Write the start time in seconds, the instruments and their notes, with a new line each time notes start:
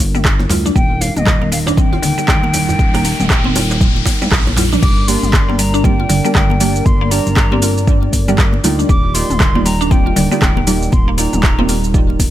Already playing: analog synth pad G3 D4 A#4
0.00 analog synth bass G1, open hi-hat, high conga, shaker
0.15 synth pluck G3, mid tom, muted conga, shaker
0.25 kick, cross-stick, clap, shaker
0.40 muted conga, djembe tone, high conga
0.50 analog synth bass D2, synth pluck F4, open hi-hat, djembe slap, djembe bass, low conga, shaker
0.65 synth pluck D4, djembe tone, low conga, shaker
0.76 analog synth bass D#1, synth pluck G3, analog synth pad G3 D#4 A#4, flute G5, kick, riser, muted conga, high conga, shaker
1.01 flute F5, open hi-hat, muted conga, djembe tone, shaker
1.16 analog synth bass D#1, flute D#5, mid tom, low conga, shaker
1.26 synth pluck D3, kick, cross-stick, clap, muted conga, djembe tone, shaker
1.41 synth pluck A#3, high conga
1.52 synth pluck G3, flute F5, open hi-hat, muted conga, shaker
1.67 synth pluck D4, djembe slap, djembe tone, shaker
1.77 synth pluck C4, flute G5, kick, low conga, shaker
1.93 synth pluck F4, muted conga, djembe tone
2.02 analog synth bass D#1, synth pluck D3, open hi-hat, shaker
2.18 synth pluck G3, muted conga, high conga, shaker
2.28 analog synth bass D#1, synth pluck D3, kick, cross-stick, clap, mid tom, djembe tone, shaker
2.43 synth pluck A#3, muted conga, high conga
2.53 synth pluck G3, open hi-hat, djembe tone, low conga, shaker
2.69 djembe bass, shaker
2.79 analog synth bass D#1, kick, muted conga, high conga, shaker
2.94 synth pluck A#3, cross-stick, open hi-hat, djembe tone
3.04 synth pluck A#3, open hi-hat, muted conga, shaker
3.20 analog synth bass D#1, mid tom, djembe tone, low conga, shaker
3.30 kick, cross-stick, clap, muted conga, shaker
3.44 synth pluck C4, high conga
3.56 synth pluck F4, open hi-hat, muted conga, djembe tone, shaker
3.71 djembe slap, shaker
3.81 kick, djembe tone, low conga, shaker
3.96 muted conga
4.06 kick, open hi-hat, djembe slap, high conga, shaker
4.22 synth pluck G3, mid tom, muted conga, djembe tone, shaker
4.32 analog synth bass A#1, kick, cross-stick, clap, high tom, shaker
4.47 high tom, muted conga, djembe tone, high conga
4.56 synth pluck F4, open hi-hat, djembe slap, low conga, djembe bass, shaker
4.72 synth pluck D4, mid tom, low conga, shaker
4.82 analog synth bass G1, synth pluck G3, analog synth pad G3 D4 A#4 D5, flute D6, kick, crash, muted conga, high conga, shaker
5.08 synth stab A#3 D4 G4 A#4 D5, flute C6, open hi-hat, muted conga, shaker
5.23 analog synth bass G1, mid tom, shaker
5.33 synth pluck D3, kick, cross-stick, clap, muted conga, shaker
5.48 synth stab A#3 D4 G4 A#4 D5, synth pluck A#3, high conga
5.54 flute C6
5.58 synth pluck G3, flute A#5, open hi-hat, muted conga, shaker
5.74 synth pluck D4, shaker
5.84 synth stab A#3 D4 G4 A#4 D5, synth pluck C4, flute G5, kick, low conga, shaker
5.99 synth pluck F4, muted conga
6.09 analog synth bass G1, synth pluck D3, open hi-hat, low conga, shaker
6.25 synth pluck G3, synth stab A#3 D4 G4 A#4 D5, muted conga, high conga, shaker
6.35 analog synth bass G1, synth pluck D3, flute G5, kick, cross-stick, clap, mid tom, shaker
6.50 synth pluck A#3, muted conga, high conga
6.60 synth pluck G3, synth stab A#3 D4 G4 A#4 D5, open hi-hat, low conga, shaker
6.76 shaker
6.86 analog synth bass G1, flute C6, kick, muted conga, high conga, shaker
7.01 synth pluck A#3
7.11 synth stab A#3 D4 G4 A#4 D5, synth pluck A#3, flute A#5, open hi-hat, muted conga, shaker
7.27 analog synth bass G1, low conga, shaker
7.36 kick, cross-stick, clap, muted conga, shaker
7.52 synth stab A#3 D4 G4 A#4 D5, synth pluck C4, high conga
7.62 synth pluck F4, open hi-hat, muted conga, shaker
7.78 shaker
7.87 synth stab A#3 D4 G4 A#4 D5, kick, shaker
8.03 muted conga
8.13 analog synth bass G1, kick, open hi-hat, high conga, shaker
8.28 synth pluck G3, synth stab A#3 D4 G4 A#4 D5, mid tom, muted conga, low conga, shaker
8.38 kick, cross-stick, clap, low conga, shaker
8.53 muted conga, high conga
8.64 analog synth bass D2, synth stab A#3 D#4 F4 G4 D5, synth pluck F4, open hi-hat, low conga, shaker
8.79 synth pluck D4, shaker
8.89 analog synth bass D#1, synth pluck G3, analog synth pad D#4 A#4, flute D6, kick, muted conga, high conga, shaker
9.14 synth stab A#3 D#4 F4 G4 D5, flute C6, open hi-hat, muted conga, shaker
9.30 analog synth bass D#1, mid tom, shaker
9.40 synth pluck D3, kick, cross-stick, clap, muted conga, shaker
9.55 synth stab A#3 D#4 F4 G4 D5, synth pluck A#3, high conga
9.65 synth pluck G3, flute A#5, open hi-hat, muted conga, shaker
9.81 synth pluck D4, shaker
9.90 synth stab A#3 D#4 F4 G4 D5, synth pluck C4, flute G5, kick, low conga, shaker
10.06 synth pluck F4, muted conga
10.16 analog synth bass D#1, synth pluck D3, open hi-hat, low conga, shaker
10.31 synth pluck G3, synth stab A#3 D#4 F4 G4 D5, muted conga, high conga, shaker
10.42 analog synth bass D#1, synth pluck D3, flute G5, kick, cross-stick, clap, mid tom, shaker
10.57 synth pluck A#3, muted conga, high conga
10.67 synth pluck G3, synth stab A#3 D#4 F4 G4 D5, open hi-hat, low conga, shaker
10.82 shaker
10.92 analog synth bass D#1, flute C6, kick, muted conga, high conga, shaker
11.08 synth pluck A#3
11.18 synth stab A#3 D#4 F4 G4 D5, synth pluck A#3, flute A#5, open hi-hat, muted conga, shaker
11.33 analog synth bass D#1, mid tom, low conga, shaker
11.43 kick, cross-stick, clap, muted conga, shaker
11.58 synth stab A#3 D#4 F4 G4 D5, synth pluck C4, high conga
11.69 synth pluck F4, open hi-hat, muted conga, shaker
11.84 shaker
11.94 synth stab A#3 D#4 F4 G4 D5, kick, shaker
12.10 muted conga
12.19 analog synth bass D#1, kick, open hi-hat, high conga, shaker